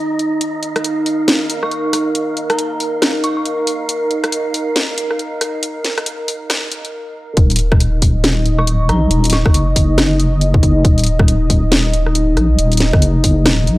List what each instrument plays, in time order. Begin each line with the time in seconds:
Already playing: synth texture D#4 D#5, analog synth pad D#4 D#5
0.19 closed hi-hat
0.41 analog synth pad A#4, synth texture F5, closed hi-hat
0.63 closed hi-hat
0.76 cross-stick, closed hi-hat
0.84 closed hi-hat
1.06 open hi-hat
1.28 snare, closed hi-hat
1.50 closed hi-hat
1.63 synth bell C#6, cross-stick
1.71 closed hi-hat
1.93 cross-stick, open hi-hat
2.15 closed hi-hat
2.37 closed hi-hat
2.50 synth bell A#5, cross-stick, closed hi-hat
2.59 closed hi-hat
2.80 open hi-hat
3.02 cross-stick, snare, closed hi-hat
3.24 synth bell C#6, closed hi-hat
3.37 synth bell C#6
3.45 closed hi-hat
3.67 open hi-hat
3.89 closed hi-hat
4.11 closed hi-hat
4.24 cross-stick, closed hi-hat
4.32 closed hi-hat
4.54 open hi-hat
4.76 snare, closed hi-hat
4.98 closed hi-hat
5.11 cross-stick
5.19 closed hi-hat
5.41 cross-stick, open hi-hat
5.63 closed hi-hat
5.84 snare, closed hi-hat
5.98 cross-stick, closed hi-hat
6.06 closed hi-hat
6.28 open hi-hat
6.50 cross-stick, snare, closed hi-hat
6.72 closed hi-hat
6.85 closed hi-hat
7.37 wobble bass D#1, analog synth pad D#4 D#5, kick, closed hi-hat
7.50 closed hi-hat
7.56 closed hi-hat
7.59 closed hi-hat
7.72 kick, cross-stick
7.80 closed hi-hat
8.02 kick, open hi-hat
8.24 snare, closed hi-hat
8.46 closed hi-hat
8.58 synth bell C#6, cross-stick
8.67 closed hi-hat
8.89 wobble bass A#1, synth bell A#5, cross-stick, closed hi-hat
9.11 wobble bass D#1, closed hi-hat
9.24 closed hi-hat
9.30 synth bell C#6, snare, closed hi-hat
9.33 closed hi-hat
9.46 wobble bass F#1, kick, cross-stick
9.54 closed hi-hat
9.76 kick, open hi-hat
9.98 cross-stick, snare, closed hi-hat
10.20 closed hi-hat
10.41 closed hi-hat
10.54 kick
10.63 kick, closed hi-hat
10.85 wobble bass D#1, kick, closed hi-hat
10.98 closed hi-hat
11.04 closed hi-hat
11.06 closed hi-hat
11.19 kick, cross-stick
11.28 closed hi-hat
11.50 kick, open hi-hat
11.72 snare, closed hi-hat
11.94 closed hi-hat
12.06 cross-stick
12.15 closed hi-hat
12.37 wobble bass A#1, cross-stick, closed hi-hat
12.59 wobble bass D#1, closed hi-hat
12.72 closed hi-hat
12.77 snare, closed hi-hat
12.80 closed hi-hat
12.93 wobble bass F#1, kick, cross-stick
13.02 closed hi-hat
13.24 kick, open hi-hat
13.46 wobble bass D#1, cross-stick, snare, closed hi-hat
13.67 wobble bass A#1, closed hi-hat